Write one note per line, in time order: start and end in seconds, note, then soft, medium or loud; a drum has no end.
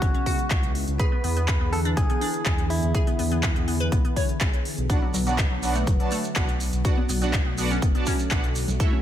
0.00 0.12 G#1 medium
0.00 0.96 C#3 medium
0.00 0.96 G#3 medium
0.00 4.86 B3 medium
0.00 0.11 C#4 medium
0.00 0.96 E4 medium
0.00 0.71 F#4 medium
0.00 kick loud
0.00 closed hi-hat medium
0.14 0.23 C#4 medium
0.14 closed hi-hat soft
0.26 0.90 F#4 medium
0.26 kick medium
0.26 open hi-hat loud
0.39 closed hi-hat soft
0.51 0.84 C#2 medium
0.51 kick loud
0.51 clap loud
0.51 closed hi-hat medium
0.63 closed hi-hat soft
0.75 open hi-hat medium
0.88 0.97 C#2 medium
0.88 closed hi-hat medium
0.99 8.76 D3 medium
0.99 4.86 E3 medium
0.99 4.86 G#4 medium
0.99 1.09 G#4 loud
0.99 1.69 B4 loud
0.99 kick loud
0.99 closed hi-hat medium
1.12 1.21 B3 medium
1.24 1.57 E2 loud
1.24 1.33 B3 medium
1.24 open hi-hat loud
1.37 1.45 B3 medium
1.37 closed hi-hat medium
1.48 kick loud
1.48 clap loud
1.48 closed hi-hat medium
1.61 1.94 E2 loud
1.61 1.70 B3 medium
1.73 1.82 B3 medium
1.73 1.79 A4 loud
1.73 open hi-hat medium
1.85 1.94 D4 medium
1.85 closed hi-hat medium
1.97 2.07 B1 medium
1.97 2.06 B3 medium
1.97 2.66 G#4 loud
1.97 kick loud
1.97 closed hi-hat medium
2.10 2.18 B3 medium
2.10 closed hi-hat soft
2.21 2.85 D4 medium
2.21 open hi-hat loud
2.34 closed hi-hat medium
2.46 2.79 E2 medium
2.46 kick loud
2.46 clap loud
2.46 closed hi-hat medium
2.58 closed hi-hat soft
2.70 4.37 E4 medium
2.70 open hi-hat medium
2.83 2.92 E2 medium
2.83 closed hi-hat medium
2.95 3.04 G#4 loud
2.95 kick loud
2.95 closed hi-hat medium
3.07 3.16 B3 medium
3.07 closed hi-hat soft
3.19 3.52 E2 loud
3.19 3.28 B3 medium
3.19 open hi-hat loud
3.32 3.40 B3 medium
3.32 closed hi-hat medium
3.43 kick loud
3.43 clap loud
3.43 closed hi-hat medium
3.56 3.89 E2 loud
3.56 3.65 B3 medium
3.56 closed hi-hat soft
3.68 3.77 B3 medium
3.68 open hi-hat medium
3.80 3.89 B4 medium
3.80 closed hi-hat medium
3.92 4.02 B1 medium
3.92 4.01 B3 medium
3.92 kick loud
3.92 closed hi-hat medium
4.05 4.14 B3 medium
4.05 closed hi-hat soft
4.16 4.80 C#5 medium
4.16 kick medium
4.16 open hi-hat loud
4.29 closed hi-hat medium
4.41 4.51 B1 medium
4.41 kick loud
4.41 clap loud
4.41 closed hi-hat medium
4.54 closed hi-hat soft
4.65 open hi-hat medium
4.78 5.11 B1 medium
4.78 closed hi-hat medium
4.90 9.02 F#3 medium
4.90 5.01 B3 medium
4.90 6.83 B3 medium
4.90 5.01 D4 medium
4.90 4.99 D4 loud
4.90 5.01 F#4 medium
4.90 5.01 D5 medium
4.90 5.01 F#5 medium
4.90 kick loud
4.90 closed hi-hat medium
4.90 shekere soft
5.02 5.11 F#3 medium
5.02 high conga medium
5.14 5.47 B1 loud
5.14 5.23 F#3 medium
5.14 open hi-hat loud
5.14 low conga medium
5.14 shekere medium
5.26 5.35 F#3 medium
5.26 5.37 B3 medium
5.26 5.37 D4 medium
5.26 5.37 F#4 medium
5.26 5.37 D5 medium
5.26 5.37 F#5 loud
5.26 closed hi-hat medium
5.26 shekere soft
5.38 kick loud
5.38 clap loud
5.38 closed hi-hat medium
5.38 shekere soft
5.51 5.84 B1 loud
5.51 5.60 F#3 medium
5.63 5.72 F#3 medium
5.63 5.74 B3 loud
5.63 5.74 D4 medium
5.63 5.74 F#4 medium
5.63 5.74 D5 medium
5.63 5.74 F#5 loud
5.63 open hi-hat medium
5.63 shekere medium
5.75 5.84 A3 medium
5.75 closed hi-hat medium
5.75 shekere soft
5.87 5.98 F#1 medium
5.87 5.97 F#3 medium
5.87 kick loud
5.87 closed hi-hat medium
5.87 shekere soft
6.00 6.09 F#3 medium
6.00 6.10 B3 medium
6.00 6.10 D4 medium
6.00 6.10 F#4 medium
6.00 6.10 D5 medium
6.00 6.10 A5 medium
6.00 closed hi-hat soft
6.11 6.75 A3 medium
6.11 open hi-hat loud
6.11 shekere medium
6.24 closed hi-hat medium
6.24 shekere medium
6.36 6.69 B1 medium
6.36 6.47 B3 medium
6.36 6.47 D4 medium
6.36 6.47 F#4 medium
6.36 6.47 D5 medium
6.36 6.47 F#5 medium
6.36 kick loud
6.36 clap loud
6.36 closed hi-hat medium
6.36 shekere soft
6.49 closed hi-hat soft
6.60 open hi-hat medium
6.60 shekere medium
6.72 6.83 B1 medium
6.72 closed hi-hat medium
6.72 shekere soft
6.85 9.02 A3 medium
6.85 6.96 B3 medium
6.85 6.96 D4 medium
6.85 6.96 F#4 medium
6.85 6.94 F#4 medium
6.85 6.96 D5 medium
6.85 6.96 F#5 loud
6.85 kick loud
6.85 closed hi-hat medium
6.85 shekere soft
6.97 7.06 B3 medium
6.97 high conga loud
7.09 7.43 B1 loud
7.09 7.19 B3 medium
7.09 open hi-hat loud
7.09 low conga medium
7.09 shekere medium
7.22 7.31 B3 medium
7.22 7.32 B3 medium
7.22 7.32 D4 medium
7.22 7.32 F#4 medium
7.22 7.32 D5 medium
7.22 7.32 F#5 loud
7.22 closed hi-hat medium
7.22 shekere medium
7.33 kick loud
7.33 clap loud
7.33 closed hi-hat medium
7.33 shekere soft
7.46 7.79 B1 loud
7.46 7.55 B3 medium
7.58 7.69 B3 loud
7.58 7.67 B3 medium
7.58 7.69 D4 medium
7.58 7.69 F#4 medium
7.58 7.69 D5 medium
7.58 7.69 F#5 loud
7.58 open hi-hat medium
7.58 shekere medium
7.71 7.79 C#4 medium
7.71 closed hi-hat medium
7.71 shekere soft
7.82 7.93 F#1 medium
7.82 7.92 B3 medium
7.82 kick loud
7.82 closed hi-hat medium
7.82 shekere soft
7.95 8.05 B3 medium
7.95 8.04 B3 medium
7.95 8.05 D4 medium
7.95 8.05 F#4 medium
7.95 8.05 D5 medium
7.95 8.05 A5 medium
7.95 closed hi-hat soft
8.06 8.70 C#4 medium
8.06 kick medium
8.06 open hi-hat loud
8.06 shekere loud
8.19 closed hi-hat medium
8.19 shekere medium
8.31 8.65 B1 medium
8.31 8.42 B3 medium
8.31 8.42 D4 medium
8.31 8.42 F#4 medium
8.31 8.42 D5 medium
8.31 8.42 F#5 medium
8.31 kick loud
8.31 clap loud
8.31 closed hi-hat medium
8.31 shekere soft
8.44 closed hi-hat soft
8.55 open hi-hat medium
8.55 shekere loud
8.68 8.78 B1 medium
8.68 closed hi-hat medium
8.68 low conga loud
8.68 shekere soft
8.80 8.91 A3 medium
8.80 9.02 E4 medium
8.80 8.91 E4 medium
8.80 8.91 F#4 medium
8.80 8.89 A4 loud
8.80 8.91 C#5 medium
8.80 8.91 E5 loud
8.80 kick loud
8.80 closed hi-hat medium
8.80 shekere soft
8.92 9.01 C#4 medium
8.92 high conga loud